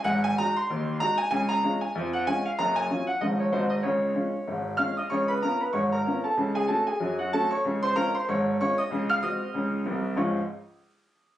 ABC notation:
X:1
M:4/4
L:1/8
Q:"Swing" 1/4=190
K:Db
V:1 name="Grand piano"
g a b c'3 b a | a b2 a2 g a f | b a2 g e d c e | d6 [ff'] [ee'] |
[dd'] [_c_c'] [Bb] [cc'] [dd'] [Bb]2 [=A=a]- | [=A=a] [_A_a] [=A=a] [_A_a]2 [Gg] [=A=a] [dd']- | [dd'] [cc'] [Bb] [cc'] [dd']2 [dd'] [ee']- | [ee'] [ff'] [ee']3 z3 |
[D,,A,,F,A,DFd'] z6 z |]
V:2 name="Grand piano" clef=bass
[A,,,A,,]2 [A,EG]2 [E,,E,]2 [A,EG]2 | [D,,D,]2 [A,DF]2 [F,,F,]2 [A,DF]2 | [G,,,G,,]2 [G,DF]2 [A,,,A,,F,DF]2 [A,,,A,,A,EG]2 | [D,,D,]2 [A,DF]2 [A,,,A,,]2 [A,DF]2 |
[D,,D,]2 [_CDF]2 [A,,,A,,]2 [CDF]2 | [D,,D,]2 [=A,DG]2 [G,,G,]2 [A,DG]2 | [D,,D,]2 [A,DF]2 [A,,,A,,]2 [A,DF]2 | [D,,D,]2 [A,CG]2 [D,,D,]2 [C,,C,]2 |
z8 |]